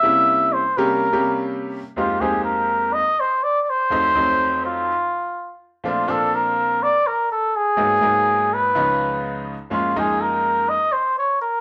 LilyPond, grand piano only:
\new Staff \with { instrumentName = "Grand piano" } { \time 4/4 \key c \phrygian \tempo 4 = 124 <c g bes des' e'>4~ <c g bes des' e'>16 r16 <c g bes des' g'>8 r16 <c g bes des' g'>4~ <c g bes des' g'>16 r8 | \key bes \mixolydian <f, aes bes c' ees' g'>8 <f, aes bes c' ees' g'>4. r2 | <f, ges a c' ees'>8 <f, ges a c' ees'>4. r2 | <bes, f a c' d'>8 <bes, f bes c' d'>4. r2 |
<aes, ges bes ces' ees'>8 <aes, ges bes ces' ees'>4. <des, f aes ces' des' ees'>4. r8 | <ges, f aes bes des'>8 <ges, f aes bes ees'>4. r2 | }